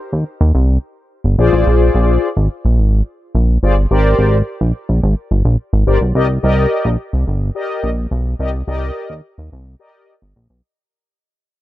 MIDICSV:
0, 0, Header, 1, 3, 480
1, 0, Start_track
1, 0, Key_signature, -3, "minor"
1, 0, Tempo, 560748
1, 1428, Time_signature, 4, 2, 24, 8
1, 9942, End_track
2, 0, Start_track
2, 0, Title_t, "Analog polysynth"
2, 0, Program_c, 0, 90
2, 1182, Note_on_c, 0, 65, 87
2, 1185, Note_on_c, 0, 68, 80
2, 1186, Note_on_c, 0, 72, 82
2, 1188, Note_on_c, 0, 74, 93
2, 1953, Note_off_c, 0, 65, 0
2, 1954, Note_off_c, 0, 68, 0
2, 1955, Note_off_c, 0, 72, 0
2, 1956, Note_off_c, 0, 74, 0
2, 3106, Note_on_c, 0, 65, 86
2, 3108, Note_on_c, 0, 72, 77
2, 3109, Note_on_c, 0, 68, 74
2, 3113, Note_on_c, 0, 74, 94
2, 3205, Note_off_c, 0, 65, 0
2, 3206, Note_off_c, 0, 68, 0
2, 3206, Note_off_c, 0, 72, 0
2, 3208, Note_off_c, 0, 74, 0
2, 3344, Note_on_c, 0, 67, 92
2, 3347, Note_on_c, 0, 70, 82
2, 3349, Note_on_c, 0, 72, 81
2, 3349, Note_on_c, 0, 74, 93
2, 3738, Note_off_c, 0, 67, 0
2, 3739, Note_off_c, 0, 70, 0
2, 3740, Note_off_c, 0, 72, 0
2, 3741, Note_off_c, 0, 74, 0
2, 5022, Note_on_c, 0, 67, 82
2, 5023, Note_on_c, 0, 70, 80
2, 5025, Note_on_c, 0, 72, 76
2, 5028, Note_on_c, 0, 74, 91
2, 5123, Note_off_c, 0, 67, 0
2, 5123, Note_off_c, 0, 70, 0
2, 5124, Note_off_c, 0, 72, 0
2, 5126, Note_off_c, 0, 74, 0
2, 5267, Note_on_c, 0, 67, 91
2, 5268, Note_on_c, 0, 70, 82
2, 5270, Note_on_c, 0, 74, 81
2, 5273, Note_on_c, 0, 75, 99
2, 5365, Note_off_c, 0, 67, 0
2, 5366, Note_off_c, 0, 70, 0
2, 5367, Note_off_c, 0, 74, 0
2, 5368, Note_off_c, 0, 75, 0
2, 5502, Note_on_c, 0, 67, 97
2, 5504, Note_on_c, 0, 70, 88
2, 5505, Note_on_c, 0, 74, 84
2, 5509, Note_on_c, 0, 75, 99
2, 5897, Note_off_c, 0, 67, 0
2, 5898, Note_off_c, 0, 70, 0
2, 5898, Note_off_c, 0, 74, 0
2, 5900, Note_off_c, 0, 75, 0
2, 6461, Note_on_c, 0, 67, 84
2, 6465, Note_on_c, 0, 70, 75
2, 6467, Note_on_c, 0, 74, 70
2, 6468, Note_on_c, 0, 75, 92
2, 6759, Note_off_c, 0, 67, 0
2, 6760, Note_off_c, 0, 70, 0
2, 6762, Note_off_c, 0, 74, 0
2, 6762, Note_off_c, 0, 75, 0
2, 7183, Note_on_c, 0, 67, 86
2, 7184, Note_on_c, 0, 70, 75
2, 7185, Note_on_c, 0, 74, 81
2, 7190, Note_on_c, 0, 75, 96
2, 7283, Note_off_c, 0, 67, 0
2, 7284, Note_off_c, 0, 70, 0
2, 7284, Note_off_c, 0, 74, 0
2, 7287, Note_off_c, 0, 75, 0
2, 7423, Note_on_c, 0, 67, 83
2, 7424, Note_on_c, 0, 70, 81
2, 7425, Note_on_c, 0, 74, 90
2, 7431, Note_on_c, 0, 75, 104
2, 7818, Note_off_c, 0, 67, 0
2, 7818, Note_off_c, 0, 70, 0
2, 7819, Note_off_c, 0, 74, 0
2, 7822, Note_off_c, 0, 75, 0
2, 8383, Note_on_c, 0, 67, 80
2, 8386, Note_on_c, 0, 70, 79
2, 8388, Note_on_c, 0, 74, 76
2, 8389, Note_on_c, 0, 75, 87
2, 8679, Note_off_c, 0, 67, 0
2, 8681, Note_off_c, 0, 70, 0
2, 8682, Note_off_c, 0, 74, 0
2, 8682, Note_off_c, 0, 75, 0
2, 9942, End_track
3, 0, Start_track
3, 0, Title_t, "Analog synth bass"
3, 0, Program_c, 1, 38
3, 108, Note_on_c, 1, 39, 100
3, 208, Note_off_c, 1, 39, 0
3, 349, Note_on_c, 1, 39, 100
3, 448, Note_off_c, 1, 39, 0
3, 468, Note_on_c, 1, 36, 104
3, 668, Note_off_c, 1, 36, 0
3, 1064, Note_on_c, 1, 31, 86
3, 1166, Note_off_c, 1, 31, 0
3, 1186, Note_on_c, 1, 34, 97
3, 1287, Note_off_c, 1, 34, 0
3, 1308, Note_on_c, 1, 33, 88
3, 1408, Note_off_c, 1, 33, 0
3, 1427, Note_on_c, 1, 34, 112
3, 1627, Note_off_c, 1, 34, 0
3, 1666, Note_on_c, 1, 34, 118
3, 1867, Note_off_c, 1, 34, 0
3, 2025, Note_on_c, 1, 32, 102
3, 2126, Note_off_c, 1, 32, 0
3, 2267, Note_on_c, 1, 34, 99
3, 2386, Note_on_c, 1, 32, 111
3, 2399, Note_off_c, 1, 34, 0
3, 2587, Note_off_c, 1, 32, 0
3, 2865, Note_on_c, 1, 34, 93
3, 3066, Note_off_c, 1, 34, 0
3, 3106, Note_on_c, 1, 31, 99
3, 3307, Note_off_c, 1, 31, 0
3, 3346, Note_on_c, 1, 32, 117
3, 3547, Note_off_c, 1, 32, 0
3, 3584, Note_on_c, 1, 32, 103
3, 3785, Note_off_c, 1, 32, 0
3, 3946, Note_on_c, 1, 34, 90
3, 4047, Note_off_c, 1, 34, 0
3, 4186, Note_on_c, 1, 34, 94
3, 4287, Note_off_c, 1, 34, 0
3, 4307, Note_on_c, 1, 32, 107
3, 4407, Note_off_c, 1, 32, 0
3, 4546, Note_on_c, 1, 31, 91
3, 4647, Note_off_c, 1, 31, 0
3, 4665, Note_on_c, 1, 34, 96
3, 4766, Note_off_c, 1, 34, 0
3, 4905, Note_on_c, 1, 32, 91
3, 5006, Note_off_c, 1, 32, 0
3, 5026, Note_on_c, 1, 31, 97
3, 5127, Note_off_c, 1, 31, 0
3, 5147, Note_on_c, 1, 35, 93
3, 5247, Note_off_c, 1, 35, 0
3, 5266, Note_on_c, 1, 36, 100
3, 5466, Note_off_c, 1, 36, 0
3, 5506, Note_on_c, 1, 36, 111
3, 5707, Note_off_c, 1, 36, 0
3, 5863, Note_on_c, 1, 34, 107
3, 5965, Note_off_c, 1, 34, 0
3, 6106, Note_on_c, 1, 36, 89
3, 6206, Note_off_c, 1, 36, 0
3, 6226, Note_on_c, 1, 31, 104
3, 6426, Note_off_c, 1, 31, 0
3, 6705, Note_on_c, 1, 34, 98
3, 6906, Note_off_c, 1, 34, 0
3, 6945, Note_on_c, 1, 35, 98
3, 7146, Note_off_c, 1, 35, 0
3, 7185, Note_on_c, 1, 36, 105
3, 7386, Note_off_c, 1, 36, 0
3, 7427, Note_on_c, 1, 36, 109
3, 7627, Note_off_c, 1, 36, 0
3, 7787, Note_on_c, 1, 39, 90
3, 7887, Note_off_c, 1, 39, 0
3, 8030, Note_on_c, 1, 39, 82
3, 8129, Note_off_c, 1, 39, 0
3, 8152, Note_on_c, 1, 36, 100
3, 8350, Note_off_c, 1, 36, 0
3, 8749, Note_on_c, 1, 31, 84
3, 8849, Note_off_c, 1, 31, 0
3, 8869, Note_on_c, 1, 34, 99
3, 8968, Note_off_c, 1, 34, 0
3, 8987, Note_on_c, 1, 35, 85
3, 9087, Note_off_c, 1, 35, 0
3, 9942, End_track
0, 0, End_of_file